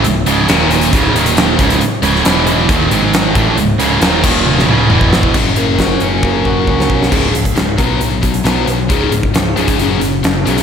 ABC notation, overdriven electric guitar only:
X:1
M:4/4
L:1/8
Q:1/4=135
K:C#dor
V:1 name="Overdriven electric guitar" clef=bass
[C,,G,,] [C,,G,,C,] [D,,A,,D,]2 [C,,G,,C,] [D,,A,,D,]2 [C,,G,,C,] | z [C,,G,,C,] [E,,B,,E,]2 [D,,A,,D,] [G,,D,G,]2 [=A,,E,=A,] | [C,,G,,] [C,,G,,C,] [D,,A,,D,] [D,,A,,D,]2 [C,,G,,C,] [E,,B,,E,]2 | z8 |
z8 | z8 |]